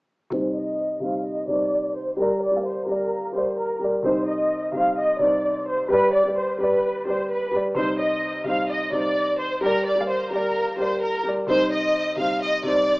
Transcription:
0.30 0.85 C3 medium
0.30 0.86 G3 medium
0.30 0.86 D#4 medium
0.30 0.53 C5 loud
0.35 0.87 C5 medium
0.56 1.00 D#5 medium
1.00 1.37 C3 medium
1.00 1.38 G3 medium
1.00 1.38 D#4 medium
1.00 1.23 F5 medium
1.05 1.39 C5 medium
1.26 1.46 D#5 loud
1.47 2.01 C3 medium
1.47 2.02 G3 medium
1.47 2.03 D#4 medium
1.47 1.93 D5 loud
1.52 2.04 C5 medium
1.96 2.16 C5 medium
2.17 2.44 G3 loud
2.17 2.45 G4 medium
2.17 2.39 A#4 loud
2.17 2.46 A#4 medium
2.22 2.47 D5 loud
2.42 2.62 D5 medium
2.51 2.79 G3 medium
2.51 2.80 G4 medium
2.51 2.81 A#4 medium
2.56 2.82 F5 medium
2.66 2.85 C5 medium
2.86 3.23 G3 medium
2.86 3.24 G4 medium
2.86 3.32 A#4 medium
2.86 3.25 A#4 medium
2.91 3.25 D5 medium
3.32 3.69 G3 medium
3.32 3.70 G4 medium
3.32 3.71 A#4 medium
3.32 3.55 C5 medium
3.38 3.72 D5 medium
3.59 3.78 A#4 medium
3.79 3.98 G3 medium
3.79 3.99 G4 medium
3.79 4.00 A#4 medium
3.84 4.01 D5 medium
4.02 4.57 C3 medium
4.02 4.58 G3 medium
4.02 4.59 D#4 loud
4.02 4.25 C5 loud
4.08 4.59 C5 loud
4.28 4.72 D#5 medium
4.72 5.09 C3 medium
4.72 5.10 G3 medium
4.72 5.10 D#4 medium
4.72 4.95 F5 medium
4.77 5.11 C5 medium
4.98 5.18 D#5 medium
5.19 5.73 C3 medium
5.19 5.74 G3 medium
5.19 5.75 D#4 medium
5.19 5.65 D5 medium
5.24 5.76 C5 medium
5.68 5.88 C5 medium
5.89 6.16 G3 loud
5.89 6.17 G4 medium
5.89 6.11 B4 loud
5.89 6.18 B4 medium
5.94 6.19 D5 loud
6.14 6.34 D5 medium
6.24 6.51 G3 medium
6.24 6.52 G4 medium
6.24 6.53 B4 medium
6.29 6.54 D5 medium
6.38 6.58 C5 medium
6.58 6.95 G3 medium
6.58 6.96 G4 medium
6.58 7.05 B4 medium
6.58 6.97 B4 medium
6.63 6.98 D5 medium
7.05 7.42 G3 medium
7.05 7.43 G4 medium
7.05 7.43 B4 medium
7.05 7.27 C5 medium
7.10 7.44 D5 medium
7.31 7.51 B4 medium
7.51 7.70 G3 medium
7.51 7.71 G4 medium
7.51 7.72 B4 medium
7.56 7.73 D5 medium
7.74 8.29 C3 medium
7.74 8.30 G3 medium
7.74 8.31 D#4 medium
7.74 7.97 C5 loud
7.79 8.31 C5 medium
8.00 8.44 D#5 medium
8.44 8.81 C3 medium
8.44 8.82 G3 medium
8.44 8.83 D#4 medium
8.44 8.67 F5 medium
8.49 8.83 C5 medium
8.70 8.90 D#5 medium
8.91 9.45 C3 medium
8.91 9.46 G3 medium
8.91 9.47 D#4 medium
8.91 9.37 D5 loud
8.96 9.48 C5 medium
9.40 9.60 C5 medium
9.61 9.89 G3 loud
9.61 9.89 G4 medium
9.61 9.83 A#4 loud
9.61 9.90 A#4 medium
9.66 9.91 D5 loud
9.87 10.06 D5 medium
9.96 10.23 G3 medium
9.96 10.24 G4 medium
9.96 10.25 A#4 medium
10.01 10.26 F5 medium
10.10 10.30 C5 medium
10.30 10.67 G3 medium
10.30 10.68 G4 medium
10.30 10.77 A#4 medium
10.30 10.69 A#4 medium
10.36 10.70 D5 medium
10.77 11.13 G3 medium
10.77 11.14 G4 medium
10.77 11.15 A#4 medium
10.77 10.99 C5 medium
10.82 11.16 D5 medium
11.03 11.22 A#4 medium
11.23 11.42 G3 medium
11.23 11.43 G4 medium
11.23 11.44 A#4 medium
11.28 11.45 D5 medium
11.47 12.01 C3 medium
11.47 12.02 G3 medium
11.47 12.03 D#4 loud
11.47 11.69 C5 loud
11.52 12.04 C5 loud
11.72 12.16 D#5 medium
12.16 12.53 C3 medium
12.16 12.54 G3 medium
12.16 12.55 D#4 medium
12.16 12.39 F5 medium
12.21 12.56 C5 medium
12.42 12.62 D#5 medium
12.63 13.00 C3 medium
12.63 13.00 G3 medium
12.63 13.00 D#4 medium
12.63 13.00 D5 medium
12.68 13.00 C5 medium

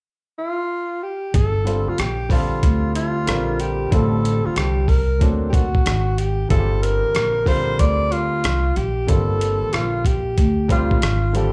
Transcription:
0.39 1.05 F4 medium
1.03 1.34 G4 medium
1.34 1.85 G1 loud
1.34 1.90 A4 medium
1.34 kick loud
1.34 closed hi-hat medium
1.65 1.91 D3 medium
1.65 1.91 G3 medium
1.65 1.92 C4 medium
1.65 1.92 F4 medium
1.65 1.93 A4 medium
1.65 closed hi-hat medium
1.87 2.01 F4 medium
1.87 muted upright bass stroke soft
1.98 2.60 A#1 medium
1.98 2.33 G4 medium
1.98 cross-stick loud
1.98 closed hi-hat medium
2.29 3.22 D3 medium
2.29 3.23 G3 medium
2.29 3.23 C4 medium
2.29 2.96 F4 medium
2.29 3.24 F4 medium
2.29 3.24 A4 medium
2.29 kick medium
2.29 open hi-hat medium
2.63 3.25 D2 medium
2.63 kick medium
2.63 closed hi-hat medium
2.95 3.62 F4 medium
2.95 closed hi-hat medium
3.26 3.89 A#1 medium
3.26 3.89 D3 medium
3.26 3.90 G3 medium
3.26 3.91 C4 medium
3.26 3.92 F4 medium
3.26 3.93 A#4 medium
3.26 cross-stick loud
3.26 closed hi-hat loud
3.60 3.94 G4 medium
3.60 closed hi-hat medium
3.91 4.43 A1 loud
3.91 4.84 D3 medium
3.91 4.84 G3 medium
3.91 4.85 C4 medium
3.91 4.85 F4 medium
3.91 4.47 A4 medium
3.91 4.86 A4 medium
3.91 kick loud
3.91 closed hi-hat medium
4.25 closed hi-hat medium
4.45 4.58 F4 medium
4.45 muted upright bass stroke soft
4.56 5.21 C2 medium
4.56 4.90 G4 medium
4.56 cross-stick loud
4.56 closed hi-hat medium
4.88 5.28 A#4 medium
4.88 kick medium
4.88 open hi-hat medium
5.19 5.83 D2 medium
5.19 5.61 F#3 medium
5.19 5.61 A#3 medium
5.19 5.62 C4 medium
5.19 5.62 D4 medium
5.19 5.63 A4 medium
5.19 kick medium
5.19 closed hi-hat medium
5.50 6.20 F#4 medium
5.50 5.55 G4 medium
5.50 kick medium
5.54 closed hi-hat medium
5.75 kick medium
5.86 6.47 G#1 medium
5.86 cross-stick loud
5.86 closed hi-hat medium
6.18 6.50 G4 medium
6.18 closed hi-hat medium
6.49 7.01 G1 loud
6.49 7.42 D3 medium
6.49 7.42 G3 medium
6.49 7.43 C4 medium
6.49 7.43 F4 medium
6.49 6.60 G#4 soft
6.49 6.84 A4 loud
6.49 kick loud
6.49 closed hi-hat medium
6.59 7.47 G4 medium
6.83 7.49 A#4 loud
6.83 closed hi-hat medium
7.04 muted upright bass stroke soft
7.15 7.76 A#1 medium
7.15 cross-stick loud
7.15 closed hi-hat medium
7.45 8.39 D3 medium
7.45 8.39 G3 medium
7.45 8.39 C4 medium
7.45 8.40 F4 medium
7.45 8.40 A#4 medium
7.45 7.81 C5 medium
7.45 kick medium
7.45 open hi-hat medium
7.79 8.41 D2 medium
7.79 8.14 D5 loud
7.79 kick medium
7.79 closed hi-hat medium
8.12 8.78 F4 loud
8.12 closed hi-hat medium
8.44 8.75 C2 medium
8.44 cross-stick loud
8.44 closed hi-hat loud
8.76 9.07 A#1 medium
8.76 9.10 G4 medium
8.76 closed hi-hat medium
9.07 9.59 G1 medium
9.07 10.00 D3 medium
9.07 10.00 G3 medium
9.07 10.02 A#3 medium
9.07 10.01 C4 medium
9.07 10.01 F4 medium
9.07 9.75 A4 medium
9.07 kick loud
9.07 closed hi-hat medium
9.41 closed hi-hat medium
9.62 muted upright bass stroke soft
9.73 10.34 A#1 medium
9.73 10.08 F4 medium
9.73 cross-stick loud
9.73 closed hi-hat medium
10.05 10.70 G4 medium
10.05 kick medium
10.05 closed hi-hat medium
10.38 10.99 D2 medium
10.38 kick medium
10.38 closed hi-hat medium
10.68 10.95 D3 medium
10.68 10.95 G3 medium
10.68 10.95 C4 medium
10.68 10.96 F4 medium
10.68 11.38 F4 medium
10.68 10.96 G4 medium
10.68 kick medium
10.68 closed hi-hat medium
10.91 kick medium
11.02 11.53 G#1 medium
11.02 cross-stick loud
11.02 closed hi-hat medium
11.33 11.53 D3 medium
11.33 11.53 G3 medium
11.33 11.53 C4 medium
11.33 11.53 F4 medium
11.33 11.53 G4 medium
11.33 11.53 A4 medium
11.33 closed hi-hat medium

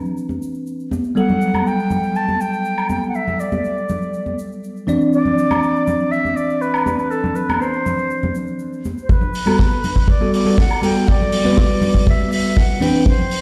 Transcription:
0.00 0.88 E3 medium
0.00 0.88 C4 medium
0.00 0.89 D4 medium
0.00 0.89 B4 medium
0.05 shaker soft
0.17 shaker soft
0.29 high conga medium
0.29 shaker soft
0.42 shaker medium
0.55 shaker soft
0.67 shaker soft
0.80 shaker soft
0.91 high conga medium
0.91 shaker medium
1.04 shaker soft
1.15 4.85 F#3 medium
1.15 4.85 G3 medium
1.15 4.85 B3 medium
1.15 4.86 A4 medium
1.15 1.69 F#5 medium
1.15 shaker soft
1.29 low conga medium
1.29 shaker soft
1.41 shaker medium
1.54 high conga medium
1.54 high woodblock medium
1.54 shaker soft
1.67 2.18 G5 medium
1.67 shaker soft
1.79 shaker soft
1.90 low conga medium
1.90 shaker medium
2.03 shaker soft
2.15 2.42 A5 loud
2.15 shaker soft
2.28 high conga medium
2.28 shaker soft
2.41 2.90 G5 loud
2.41 shaker medium
2.53 shaker soft
2.65 shaker soft
2.78 high woodblock medium
2.78 shaker soft
2.89 3.08 G5 medium
2.89 high conga medium
2.89 shaker medium
3.03 shaker soft
3.09 3.17 F#5 medium
3.15 3.41 E5 medium
3.15 shaker soft
3.28 low conga medium
3.28 shaker soft
3.40 4.39 D5 medium
3.40 shaker medium
3.52 high conga medium
3.52 shaker soft
3.64 shaker soft
3.77 shaker soft
3.89 low conga medium
3.89 shaker medium
4.02 shaker soft
4.14 shaker soft
4.26 high conga medium
4.26 shaker soft
4.39 shaker medium
4.52 shaker soft
4.64 shaker medium
4.76 shaker soft
4.87 8.81 E3 medium
4.87 8.82 C4 medium
4.87 8.82 D4 medium
4.87 8.82 D5 medium
4.87 high conga medium
4.87 shaker medium
5.01 shaker soft
5.13 6.13 D5 loud
5.13 shaker soft
5.25 low conga medium
5.25 shaker soft
5.38 shaker medium
5.51 high conga medium
5.51 high woodblock medium
5.51 shaker soft
5.63 shaker soft
5.76 shaker soft
5.87 low conga medium
5.87 shaker medium
6.00 shaker soft
6.11 6.38 E5 loud
6.11 shaker soft
6.25 high conga medium
6.25 shaker soft
6.36 6.63 D5 loud
6.36 shaker medium
6.50 shaker soft
6.61 7.12 B4 medium
6.61 shaker medium
6.74 high woodblock medium
6.74 shaker soft
6.86 high conga medium
6.86 shaker medium
6.99 shaker soft
7.10 7.37 A4 medium
7.10 shaker soft
7.24 low conga medium
7.24 shaker soft
7.35 7.63 B4 medium
7.35 shaker medium
7.49 high conga medium
7.49 high woodblock medium
7.49 shaker soft
7.61 8.35 C5 medium
7.61 shaker soft
7.73 shaker soft
7.86 low conga medium
7.86 shaker medium
7.98 shaker soft
8.10 shaker soft
8.23 high conga medium
8.23 low conga medium
8.23 shaker soft
8.35 shaker medium
8.47 shaker soft
8.59 shaker medium
8.73 shaker soft
8.85 high conga medium
8.85 shaker medium
8.98 shaker soft
9.03 9.11 C5 medium
9.09 10.11 B4 medium
9.09 kick loud
9.09 shaker medium
9.21 low conga medium
9.21 shaker soft
9.34 open hi-hat medium
9.34 shaker medium
9.46 9.56 G3 medium
9.46 9.57 B3 medium
9.46 9.57 F#4 medium
9.46 9.57 A4 medium
9.46 high conga medium
9.46 high woodblock medium
9.46 shaker soft
9.59 kick loud
9.59 snare loud
9.59 shaker soft
9.71 shaker soft
9.84 open hi-hat medium
9.84 low conga medium
9.84 shaker medium
9.96 kick medium
9.96 shaker soft
10.08 10.33 D5 loud
10.08 kick loud
10.08 shaker soft
10.21 10.43 G3 medium
10.21 10.43 B3 medium
10.21 10.43 F#4 medium
10.21 10.43 A4 loud
10.21 high conga medium
10.21 shaker soft
10.34 10.57 D5 medium
10.34 open hi-hat loud
10.34 shaker medium
10.45 10.56 G3 medium
10.45 10.56 B3 medium
10.45 10.56 F#4 medium
10.45 10.56 A4 medium
10.45 shaker soft
10.58 10.82 F#5 loud
10.58 kick loud
10.58 snare loud
10.58 shaker medium
10.70 high woodblock medium
10.70 shaker soft
10.82 11.42 G3 medium
10.82 11.42 B3 medium
10.82 11.42 F#4 medium
10.82 11.43 A4 medium
10.82 11.10 G5 loud
10.82 open hi-hat loud
10.82 high conga medium
10.82 shaker medium
10.96 shaker soft
11.07 12.07 D5 loud
11.07 kick loud
11.07 shaker soft
11.20 low conga medium
11.20 shaker soft
11.32 open hi-hat loud
11.32 shaker medium
11.44 12.78 G3 medium
11.44 12.78 B3 medium
11.44 12.79 F#4 medium
11.44 12.79 B4 loud
11.44 high conga medium
11.44 shaker soft
11.57 kick loud
11.57 snare loud
11.57 shaker soft
11.70 shaker soft
11.81 open hi-hat medium
11.81 low conga loud
11.81 shaker medium
11.94 kick medium
11.94 shaker soft
12.07 12.31 E5 loud
12.07 kick loud
12.07 shaker soft
12.19 high conga medium
12.19 shaker soft
12.32 12.59 E5 loud
12.32 open hi-hat loud
12.32 shaker medium
12.45 shaker soft
12.57 12.84 F#5 medium
12.57 kick loud
12.57 snare loud
12.57 shaker soft
12.69 shaker soft
12.80 13.06 E3 medium
12.80 13.06 C4 medium
12.80 13.06 D4 medium
12.80 13.07 B4 medium
12.80 13.07 G5 loud
12.80 open hi-hat medium
12.80 high conga loud
12.80 shaker medium
12.95 shaker soft
13.06 13.41 C5 medium
13.06 kick loud
13.06 shaker soft
13.19 low conga medium
13.19 shaker soft
13.31 open hi-hat loud
13.31 shaker medium

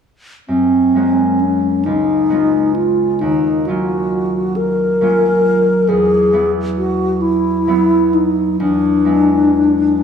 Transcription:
0.48 1.89 F#2 soft
0.48 1.42 C4 soft
0.95 2.29 G#3 soft
0.95 1.89 A#3 soft
0.95 2.30 C#4 soft
0.95 1.90 F#4 soft
1.40 1.86 C#4 soft
1.85 3.25 C#2 soft
1.85 2.75 D#4 soft
2.30 3.25 G#3 soft
2.30 3.25 B3 soft
2.30 3.67 C#4 soft
2.30 3.68 F4 soft
2.76 3.22 F4 soft
3.20 5.93 D#2 soft
3.20 3.68 D#4 soft
3.66 5.00 F#3 soft
3.66 5.00 A#3 soft
3.66 5.01 C#4 soft
3.66 5.02 F4 soft
3.66 4.58 F#4 soft
4.56 5.90 A#4 medium
5.01 6.32 F#3 soft
5.01 5.93 A#3 soft
5.01 5.94 C#4 soft
5.01 5.94 F4 soft
5.88 8.59 E2 soft
5.88 6.51 G#4 medium
6.33 7.66 F#3 soft
6.33 7.67 B3 soft
6.33 7.67 E4 soft
6.78 7.23 F#4 soft
7.22 8.16 E4 soft
7.67 9.04 F#3 soft
7.67 9.04 B3 soft
7.67 9.05 E4 soft
8.14 8.61 D#4 soft
8.60 10.03 E2 soft
8.60 10.03 D4 soft
9.05 10.03 F#3 soft
9.05 10.03 G#3 soft
9.05 10.03 B3 soft
9.05 10.03 E4 soft

